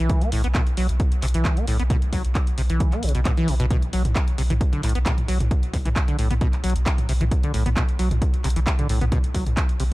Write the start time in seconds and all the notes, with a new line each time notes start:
0.00 E3
0.10 kick, closed hi-hat
0.21 B1 B3, closed hi-hat
0.32 B1 A2, open hi-hat
0.44 B1 B3, closed hi-hat
0.55 B2, kick, clap, closed hi-hat
0.67 closed hi-hat
0.77 B1 F#3, open hi-hat
0.89 B1, closed hi-hat
1.00 kick, closed hi-hat
1.12 B1, closed hi-hat
1.22 B1 C3, clap, open hi-hat
1.28 closed hi-hat
1.34 B1 E3, closed hi-hat
1.45 kick, clap, closed hi-hat
1.57 B3, closed hi-hat
1.67 B1 A2, open hi-hat
1.79 B1 B3, closed hi-hat
1.90 B2, kick, closed hi-hat
2.02 B1, closed hi-hat
2.13 B1 F#3, kick, open hi-hat
2.25 B1, closed hi-hat
2.35 kick, clap, closed hi-hat
2.47 closed hi-hat
2.58 B1 C3, open hi-hat
2.70 B1 E3, closed hi-hat
2.80 kick, closed hi-hat
2.92 B1 B3, clap, closed hi-hat
3.03 B1 C3, open hi-hat
3.09 closed hi-hat
3.15 B1 B2, closed hi-hat
3.25 B2, kick, clap, closed hi-hat
3.37 E3, closed hi-hat
3.48 B1 B2, open hi-hat
3.60 B1 B2, closed hi-hat
3.71 B2, kick, closed hi-hat
3.82 B1, closed hi-hat
3.93 B1 F#3, open hi-hat
4.05 B1, closed hi-hat, mid tom
4.16 kick, clap, closed hi-hat
4.28 closed hi-hat
4.38 B1 C3, open hi-hat
4.50 B1 E3, closed hi-hat, mid tom
4.61 kick, closed hi-hat
4.73 B1 D3, closed hi-hat
4.83 B1 A2, clap, open hi-hat
4.89 closed hi-hat
4.95 B1 B3, closed hi-hat
5.06 B2, kick, clap, closed hi-hat
5.18 closed hi-hat, mid tom
5.28 B1 F#3, open hi-hat
5.40 B1, closed hi-hat, mid tom
5.51 kick, closed hi-hat
5.63 B1, closed hi-hat
5.73 B1 C3, kick, open hi-hat
5.85 B1 E3, closed hi-hat, mid tom
5.96 kick, clap, closed hi-hat
6.08 D3, closed hi-hat
6.19 B1 A2, open hi-hat
6.31 B1 B3, closed hi-hat, mid tom
6.41 B2, kick, closed hi-hat
6.53 B1, clap, closed hi-hat
6.64 B1 F#3, open hi-hat
6.70 closed hi-hat
6.76 B1, closed hi-hat
6.86 kick, clap, closed hi-hat
6.98 closed hi-hat, mid tom
7.09 B1 C3, open hi-hat
7.21 B1 E3, closed hi-hat, mid tom
7.31 kick, closed hi-hat
7.43 B1 D3, closed hi-hat
7.54 B1 A2, open hi-hat
7.66 B1 B3, closed hi-hat, mid tom
7.77 B2, kick, clap, closed hi-hat
7.89 closed hi-hat
7.99 B1 F#3, open hi-hat
8.11 B1, closed hi-hat, mid tom
8.22 kick, closed hi-hat
8.34 B1, closed hi-hat
8.44 B1 C3, clap, open hi-hat
8.50 closed hi-hat
8.56 B1 E3, closed hi-hat
8.67 kick, clap, closed hi-hat
8.79 D3, closed hi-hat, mid tom
8.89 B1 A2, open hi-hat
9.01 B1 B3, closed hi-hat, mid tom
9.12 B2, kick, closed hi-hat
9.24 B1, closed hi-hat
9.34 B1 F#3, kick, open hi-hat
9.46 B1, closed hi-hat, mid tom
9.57 kick, clap, closed hi-hat
9.69 closed hi-hat
9.80 B1 C3, open hi-hat